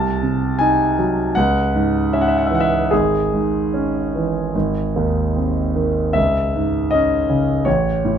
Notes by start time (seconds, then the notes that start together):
Already playing: C2 A5
0.23 C3
0.59 D#4 G#5
0.99 F#3
1.35 C#2 F#5
1.75 G#2
2.13 C#4 E5
2.21 F#5
2.28 E5
2.38 F#5
2.46 E5
2.51 E3 F#5
2.60 E5
2.91 G#1 G#4
3.33 G#2
3.74 C#4
4.15 E3
4.55 G#1
4.96 D#2
5.36 C4
5.76 D#3
6.13 C#2 E5
6.56 G#2
6.91 C#4 D#5
7.29 C#3
7.65 A1 C#5
8.05 A2